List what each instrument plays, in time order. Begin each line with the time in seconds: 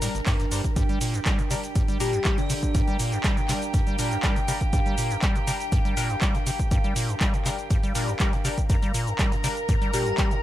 Already playing: ambient pad D4 A#4 G5, string section A#4 A#5
0.02 acid bass A2, synth stab G3 D4 A#4, open hi-hat, shaker
0.15 acid bass G1, closed hi-hat, shaker
0.26 acid bass G2, kick, clap, open hi-hat, shaker
0.40 acid bass G2, closed hi-hat, shaker
0.51 acid bass G2, synth stab G3 D4 C5, open hi-hat, shaker
0.64 kick, closed hi-hat, shaker
0.76 acid bass G2, string section G4 G5, kick, closed hi-hat, shaker
0.89 acid bass G3, closed hi-hat, shaker
1.01 acid bass A#2, open hi-hat, shaker
1.14 acid bass G2, closed hi-hat, shaker
1.25 acid bass G3, kick, clap, closed hi-hat, shaker
1.39 acid bass G2, closed hi-hat, shaker
1.51 acid bass C3, synth stab G3 D4 A#4, open hi-hat, shaker
1.64 ambient pad F5, closed hi-hat, shaker
1.75 acid bass G2, ambient pad A#5, kick, closed hi-hat, shaker
1.88 acid bass G3, closed hi-hat, shaker
2.00 acid bass A#2, synth stab G3 D4 A#4, digital synth lead G4, open hi-hat, shaker
2.13 acid bass G2, closed hi-hat, shaker
2.24 acid bass G3, kick, clap, closed hi-hat, shaker
2.38 acid bass G2, digital synth lead D4, closed hi-hat, shaker
2.50 acid bass C3, open hi-hat, shaker
2.63 kick, closed hi-hat, shaker
2.75 acid bass G2, kick, closed hi-hat, shaker
2.87 acid bass G3, closed hi-hat, shaker
2.99 acid bass A#2, open hi-hat, shaker
3.12 acid bass G2, closed hi-hat, shaker
3.24 acid bass G3, kick, clap, closed hi-hat, shaker
3.37 acid bass G2, closed hi-hat, shaker
3.48 acid bass C3, synth stab G3 D4 A#4, clap, open hi-hat, shaker
3.62 closed hi-hat, shaker
3.74 acid bass G2, kick, closed hi-hat, shaker
3.87 acid bass G3, closed hi-hat, shaker
3.99 acid bass A#2, synth stab G3 D4 A#4, open hi-hat, shaker
4.11 acid bass G2, closed hi-hat, shaker
4.23 synth stab G3 D4 A#4, acid bass G3, kick, clap, closed hi-hat, shaker
4.36 acid bass G2, closed hi-hat, shaker
4.48 acid bass C3, synth stab G3 D4 A#4, open hi-hat, shaker
4.61 kick, closed hi-hat, shaker
4.73 acid bass G2, kick, closed hi-hat, shaker
4.86 acid bass G3, closed hi-hat, shaker
4.98 acid bass A#2, open hi-hat, shaker
5.11 acid bass G2, closed hi-hat, shaker
5.22 acid bass G3, kick, clap, closed hi-hat, shaker
5.36 acid bass G2, closed hi-hat, shaker
5.47 acid bass C3, synth stab G3 D4 A#4, open hi-hat, shaker
5.60 closed hi-hat, shaker
5.72 acid bass G2, kick, closed hi-hat, shaker
5.85 acid bass G3, closed hi-hat, shaker
5.97 acid bass A#2, synth stab G3 D4 A#4, open hi-hat, shaker
6.10 acid bass G2, closed hi-hat, shaker
6.21 acid bass G3, kick, clap, closed hi-hat, shaker
6.35 acid bass G2, closed hi-hat, shaker
6.47 acid bass C3, open hi-hat, shaker
6.59 kick, closed hi-hat, shaker
6.71 acid bass G2, kick, closed hi-hat, shaker
6.84 acid bass G3, closed hi-hat, shaker
6.96 acid bass A#2, open hi-hat, shaker
7.09 acid bass G2, closed hi-hat, shaker
7.20 acid bass G3, kick, clap, closed hi-hat, shaker
7.34 acid bass G2, closed hi-hat, shaker
7.45 acid bass C3, synth stab G3 D4 A#4, clap, open hi-hat, shaker
7.59 closed hi-hat, shaker
7.70 acid bass G2, kick, closed hi-hat, shaker
7.83 acid bass G3, closed hi-hat, shaker
7.95 acid bass A#2, synth stab G3 D4 A#4, open hi-hat, shaker
8.08 acid bass G2, closed hi-hat, shaker
8.19 synth stab G3 D4 A#4, acid bass G3, kick, clap, closed hi-hat, shaker
8.33 acid bass G2, closed hi-hat, shaker
8.45 acid bass C3, synth stab G3 D4 A#4, open hi-hat, shaker
8.58 kick, closed hi-hat, shaker
8.70 acid bass G2, string section A#4 A#5, kick, closed hi-hat, shaker
8.82 acid bass G3, closed hi-hat, shaker
8.94 acid bass A#2, open hi-hat, shaker
9.07 acid bass G2, closed hi-hat, shaker
9.19 acid bass G3, kick, clap, closed hi-hat, shaker
9.32 acid bass G2, closed hi-hat, shaker
9.44 acid bass C3, synth stab G3 D4 A#4, open hi-hat, shaker
9.57 closed hi-hat, shaker
9.69 acid bass G2, kick, closed hi-hat, shaker
9.82 acid bass G3, closed hi-hat, shaker
9.93 acid bass A#2, synth stab G3 D4 A#4, digital synth lead G4, open hi-hat, shaker
10.06 acid bass G2, closed hi-hat, shaker
10.18 acid bass G3, kick, clap, closed hi-hat, shaker
10.31 acid bass G2, closed hi-hat, shaker